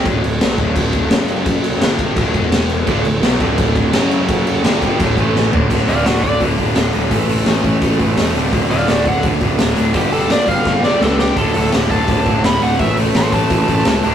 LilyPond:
<<
  \new Staff \with { instrumentName = "Lead electric guitar" } { \time 4/4 \key d \major \tempo 4 = 169 r1 | r1 | r1 | r1 |
r8 <d'' f''>8 <fis' d''>8 d''8 r2 | r1 | r8 <d'' f''>8 <fis' d''>8 fis''8 r2 | g'8 a'8 d''8 f''4 d''8 a'8 g'8 |
a'4 r8 a''4. b''8 fis''8 | e''8 r8 <a'' c'''>8 a''2~ a''8 | }
  \new Staff \with { instrumentName = "Distorted electric guitar" } { \clef bass \time 4/4 \key d \major <d, a, d>8 <d, a,>8 <b, fis b>8 <d, a, d>4. <fis, cis fis>4~ | <fis, cis fis>4 <g, d g>4 <d, a, d>8 <e, b, e>4. | <d, a, d>8 <d, a,>8 <b, fis b>8 <d, a, d>4. <fis, cis fis>4~ | <fis, cis fis>4 <g, d g>8 <g, d g>8 <d, a, d>8 <a, e a>4 <d, a, d>8 |
<d, a, d>8 <d, a, d>8 <d, a, d>8 <d, a, d>8 <d, a, d>8 <d, a, d>8 <d, a, d>8 <d, a, d>8 | <a, e a>8 <a, e a>8 <a, e a>8 <a, e a>8 <a, e a>8 <a, e a>8 <a, e a>8 <d, a, d>8 | <d, a, d>8 <d, a, d>8 <d, a, d>8 <d, a, d>8 <d, a, d>8 <d, a, d>8 <d, a, d>8 <d, a, d>8 | <g, d g>8 <g, d g>8 <g, d g>8 <g, d g>8 <g, d g>8 <g, d g>8 <g, d g>8 <g, d g>8 |
<d, a, d>8 <d, a, d>8 <d, a, d>8 <d, a, d>8 <d, a, d>8 <d, a, d>8 <d, a, d>8 <d, a, d>8 | <a, e a>8 <a, e a>8 <a, e a>8 <a, e a>8 <a, e a>8 <a, e a>8 <a, e a>8 <d, a, d>8 | }
  \new Staff \with { instrumentName = "Overdriven electric guitar" } { \clef bass \time 4/4 \key d \major r1 | r1 | <d, a, d>8 <d, a,>8 <b, fis b>8 <d, a, d>4. <fis, cis fis>4~ | <fis, cis fis>4 <g, d g>8 <g, d g>8 <d, a, d>8 <a, e a>4 <d, a, d>8 |
<d, a, d>8 <d, a, d>8 <d, a, d>8 <d, a, d>8 <d, a, d>8 <d, a, d>8 <d, a, d>8 <d, a, d>8 | <a, e a>8 <a, e a>8 <a, e a>8 <a, e a>8 <a, e a>8 <a, e a>8 <a, e a>8 <d, a, d>8 | <d, a, d>8 <d, a, d>8 <d, a, d>8 <d, a, d>8 <d, a, d>8 <d, a, d>8 <d, a, d>8 <d, a, d>8 | <g, d g>8 <g, d g>8 <g, d g>8 <g, d g>8 <g, d g>8 <g, d g>8 <g, d g>8 <g, d g>8 |
<d, a, d>8 <d, a, d>8 <d, a, d>8 <d, a, d>8 <d, a, d>8 <d, a, d>8 <d, a, d>8 <d, a, d>8 | <a, e a>8 <a, e a>8 <a, e a>8 <a, e a>8 <a, e a>8 <a, e a>8 <a, e a>8 <d, a, d>8 | }
  \new Staff \with { instrumentName = "Picked electric bass" } { \clef bass \time 4/4 \key d \major d,,8 d,,8 b,,8 d,,4. fis,,4~ | fis,,4 g,,4 d,,8 e,,4. | d,,8 d,,8 b,,8 d,,4. fis,,4~ | fis,,4 g,,8 g,,8 d,,8 a,,4 d,,8 |
d,,8 d,,8 d,,8 d,,8 d,,8 d,,8 d,,8 d,,8 | a,,4 a,,8 a,,8 a,,8 a,,8 e,,8 d,,8 | d,,8 d,,8 d,,8 d,,8 d,,8 d,,8 d,,8 d,,8 | g,,4 g,,8 g,,8 g,,8 g,,8 cis,4 |
d,,8 d,,8 d,,8 d,,8 d,,8 d,,8 d,,8 d,,8 | a,,4 a,,8 a,,8 a,,8 a,,8 cis,8 d,,8 | }
  \new DrumStaff \with { instrumentName = "Drums" } \drummode { \time 4/4 <cymc bd>8 cymc8 <cymc sn>8 <cymc bd>8 <cymc bd>8 <cymc bd>8 <cymc sn>8 cymc8 | <cymc bd>8 cymc8 <cymc sn>8 <cymc bd>8 <cymc bd>8 <cymc bd>8 <cymc sn>8 cymc8 | <cymc bd>8 cymc8 <cymc sn>8 <cymc bd>8 <cymc bd>8 <cymc bd>8 <cymc sn>8 cymc8 | <cymc bd>8 cymc8 <cymc sn>8 <cymc bd>8 <cymc bd>8 <cymc bd>8 sn8 tomfh8 |
<cymc bd>8 hho8 <hho sn>8 <hho bd>8 <hho bd>8 <hho bd>8 <hho sn>8 hho8 | <hho bd>8 hho8 <hho sn>8 <hho bd>8 <hho bd>8 <hho bd>8 <hho sn>8 hho8 | <hho bd>8 hho8 <hho sn>8 <hho bd>8 <hho bd>8 <hho bd>8 <hho sn>8 hho8 | <hho bd>8 hho8 <hho sn>8 <hho bd>8 <bd sn>8 sn8 sn8 sn8 |
<hho bd>8 hho8 <hho sn>8 <hho bd>8 <hho bd>8 <hho bd>8 <hho sn>8 hho8 | <hho bd>8 hho8 <hho sn>8 <hho bd>8 <hho bd>8 <hho bd>8 <hho sn>8 hho8 | }
>>